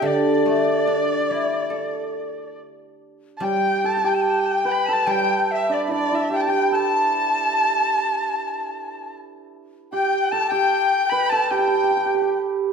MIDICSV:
0, 0, Header, 1, 5, 480
1, 0, Start_track
1, 0, Tempo, 839161
1, 25, Time_signature, 4, 2, 24, 8
1, 2905, Tempo, 808625
1, 7445, End_track
2, 0, Start_track
2, 0, Title_t, "Dizi"
2, 0, Program_c, 0, 73
2, 29, Note_on_c, 0, 74, 74
2, 1467, Note_off_c, 0, 74, 0
2, 1952, Note_on_c, 0, 79, 82
2, 2287, Note_off_c, 0, 79, 0
2, 2313, Note_on_c, 0, 79, 67
2, 2371, Note_on_c, 0, 81, 68
2, 2379, Note_off_c, 0, 79, 0
2, 2414, Note_on_c, 0, 79, 65
2, 2422, Note_off_c, 0, 81, 0
2, 2459, Note_on_c, 0, 81, 72
2, 2467, Note_off_c, 0, 79, 0
2, 2517, Note_on_c, 0, 79, 68
2, 2525, Note_off_c, 0, 81, 0
2, 2549, Note_on_c, 0, 81, 72
2, 2558, Note_off_c, 0, 79, 0
2, 2583, Note_on_c, 0, 79, 79
2, 2592, Note_off_c, 0, 81, 0
2, 2783, Note_on_c, 0, 81, 85
2, 2791, Note_off_c, 0, 79, 0
2, 2897, Note_on_c, 0, 79, 89
2, 2906, Note_off_c, 0, 81, 0
2, 3113, Note_off_c, 0, 79, 0
2, 3130, Note_on_c, 0, 79, 55
2, 3162, Note_on_c, 0, 76, 80
2, 3171, Note_off_c, 0, 79, 0
2, 3285, Note_on_c, 0, 74, 76
2, 3294, Note_off_c, 0, 76, 0
2, 3357, Note_off_c, 0, 74, 0
2, 3363, Note_on_c, 0, 76, 58
2, 3399, Note_on_c, 0, 74, 79
2, 3408, Note_off_c, 0, 76, 0
2, 3636, Note_off_c, 0, 74, 0
2, 3644, Note_on_c, 0, 79, 81
2, 3715, Note_off_c, 0, 79, 0
2, 3722, Note_on_c, 0, 79, 78
2, 3867, Note_off_c, 0, 79, 0
2, 3879, Note_on_c, 0, 81, 87
2, 5287, Note_off_c, 0, 81, 0
2, 5780, Note_on_c, 0, 79, 91
2, 6014, Note_on_c, 0, 81, 96
2, 6023, Note_off_c, 0, 79, 0
2, 6115, Note_off_c, 0, 81, 0
2, 6119, Note_on_c, 0, 79, 100
2, 6611, Note_on_c, 0, 81, 91
2, 6620, Note_off_c, 0, 79, 0
2, 6726, Note_on_c, 0, 79, 83
2, 6735, Note_off_c, 0, 81, 0
2, 7216, Note_off_c, 0, 79, 0
2, 7445, End_track
3, 0, Start_track
3, 0, Title_t, "Erhu"
3, 0, Program_c, 1, 110
3, 41, Note_on_c, 1, 74, 81
3, 1473, Note_off_c, 1, 74, 0
3, 1929, Note_on_c, 1, 81, 60
3, 1969, Note_on_c, 1, 79, 89
3, 1977, Note_off_c, 1, 81, 0
3, 2206, Note_on_c, 1, 81, 92
3, 2214, Note_off_c, 1, 79, 0
3, 2330, Note_on_c, 1, 79, 88
3, 2338, Note_off_c, 1, 81, 0
3, 2698, Note_on_c, 1, 83, 91
3, 2706, Note_off_c, 1, 79, 0
3, 2820, Note_on_c, 1, 81, 96
3, 2828, Note_off_c, 1, 83, 0
3, 2924, Note_on_c, 1, 79, 100
3, 2933, Note_off_c, 1, 81, 0
3, 3157, Note_off_c, 1, 79, 0
3, 3178, Note_on_c, 1, 76, 84
3, 3296, Note_on_c, 1, 74, 77
3, 3305, Note_off_c, 1, 76, 0
3, 3403, Note_off_c, 1, 74, 0
3, 3418, Note_on_c, 1, 74, 93
3, 3540, Note_on_c, 1, 76, 83
3, 3549, Note_off_c, 1, 74, 0
3, 3669, Note_on_c, 1, 79, 93
3, 3678, Note_off_c, 1, 76, 0
3, 3692, Note_on_c, 1, 81, 75
3, 3701, Note_off_c, 1, 79, 0
3, 3746, Note_on_c, 1, 79, 90
3, 3755, Note_off_c, 1, 81, 0
3, 3898, Note_on_c, 1, 81, 99
3, 3907, Note_off_c, 1, 79, 0
3, 5320, Note_off_c, 1, 81, 0
3, 5790, Note_on_c, 1, 79, 91
3, 6015, Note_on_c, 1, 81, 90
3, 6024, Note_off_c, 1, 79, 0
3, 6127, Note_on_c, 1, 79, 96
3, 6136, Note_off_c, 1, 81, 0
3, 6477, Note_on_c, 1, 83, 101
3, 6485, Note_off_c, 1, 79, 0
3, 6594, Note_on_c, 1, 81, 101
3, 6603, Note_off_c, 1, 83, 0
3, 6717, Note_on_c, 1, 79, 93
3, 6726, Note_off_c, 1, 81, 0
3, 7212, Note_off_c, 1, 79, 0
3, 7445, End_track
4, 0, Start_track
4, 0, Title_t, "Hammered dulcimer"
4, 0, Program_c, 2, 15
4, 0, Note_on_c, 2, 64, 54
4, 0, Note_on_c, 2, 67, 79
4, 0, Note_on_c, 2, 69, 55
4, 7, Note_on_c, 2, 62, 60
4, 130, Note_off_c, 2, 64, 0
4, 1181, Note_off_c, 2, 69, 0
4, 1354, Note_off_c, 2, 67, 0
4, 1955, Note_on_c, 2, 67, 77
4, 2142, Note_off_c, 2, 62, 0
4, 2198, Note_on_c, 2, 69, 76
4, 2269, Note_off_c, 2, 69, 0
4, 2271, Note_on_c, 2, 69, 58
4, 2310, Note_off_c, 2, 67, 0
4, 2312, Note_on_c, 2, 67, 75
4, 2660, Note_on_c, 2, 71, 85
4, 2793, Note_off_c, 2, 69, 0
4, 2795, Note_on_c, 2, 69, 82
4, 2899, Note_off_c, 2, 67, 0
4, 2902, Note_on_c, 2, 67, 78
4, 3270, Note_on_c, 2, 62, 67
4, 3382, Note_on_c, 2, 64, 53
4, 3394, Note_off_c, 2, 62, 0
4, 3397, Note_on_c, 2, 62, 71
4, 3519, Note_off_c, 2, 64, 0
4, 3521, Note_on_c, 2, 64, 67
4, 3628, Note_off_c, 2, 67, 0
4, 3631, Note_on_c, 2, 67, 69
4, 3736, Note_off_c, 2, 67, 0
4, 3738, Note_on_c, 2, 67, 74
4, 3875, Note_off_c, 2, 69, 0
4, 3877, Note_on_c, 2, 69, 76
4, 4269, Note_off_c, 2, 71, 0
4, 5586, Note_off_c, 2, 64, 0
4, 5602, Note_off_c, 2, 67, 0
4, 5612, Note_off_c, 2, 62, 0
4, 5614, Note_off_c, 2, 69, 0
4, 5782, Note_on_c, 2, 67, 71
4, 6019, Note_on_c, 2, 69, 78
4, 6130, Note_off_c, 2, 67, 0
4, 6132, Note_on_c, 2, 67, 78
4, 6490, Note_on_c, 2, 71, 92
4, 6609, Note_off_c, 2, 69, 0
4, 6612, Note_on_c, 2, 69, 83
4, 6721, Note_off_c, 2, 67, 0
4, 6723, Note_on_c, 2, 67, 73
4, 6767, Note_off_c, 2, 67, 0
4, 6769, Note_on_c, 2, 67, 50
4, 6818, Note_off_c, 2, 67, 0
4, 6820, Note_on_c, 2, 67, 56
4, 6861, Note_off_c, 2, 67, 0
4, 6863, Note_on_c, 2, 67, 45
4, 6915, Note_off_c, 2, 67, 0
4, 6917, Note_on_c, 2, 67, 49
4, 6956, Note_off_c, 2, 67, 0
4, 6959, Note_on_c, 2, 67, 43
4, 6993, Note_off_c, 2, 67, 0
4, 6995, Note_on_c, 2, 67, 51
4, 7046, Note_off_c, 2, 67, 0
4, 7048, Note_on_c, 2, 67, 44
4, 7098, Note_off_c, 2, 67, 0
4, 7100, Note_on_c, 2, 67, 54
4, 7138, Note_off_c, 2, 67, 0
4, 7141, Note_on_c, 2, 67, 46
4, 7445, Note_off_c, 2, 67, 0
4, 7445, Note_off_c, 2, 69, 0
4, 7445, Note_off_c, 2, 71, 0
4, 7445, End_track
5, 0, Start_track
5, 0, Title_t, "Guzheng"
5, 0, Program_c, 3, 107
5, 12, Note_on_c, 3, 50, 58
5, 261, Note_on_c, 3, 57, 40
5, 499, Note_on_c, 3, 62, 44
5, 747, Note_on_c, 3, 64, 40
5, 972, Note_on_c, 3, 69, 39
5, 1216, Note_off_c, 3, 57, 0
5, 1458, Note_off_c, 3, 50, 0
5, 1467, Note_off_c, 3, 62, 0
5, 1721, Note_off_c, 3, 64, 0
5, 1947, Note_on_c, 3, 55, 58
5, 1955, Note_off_c, 3, 69, 0
5, 2891, Note_off_c, 3, 55, 0
5, 2898, Note_on_c, 3, 55, 57
5, 4352, Note_off_c, 3, 55, 0
5, 7445, End_track
0, 0, End_of_file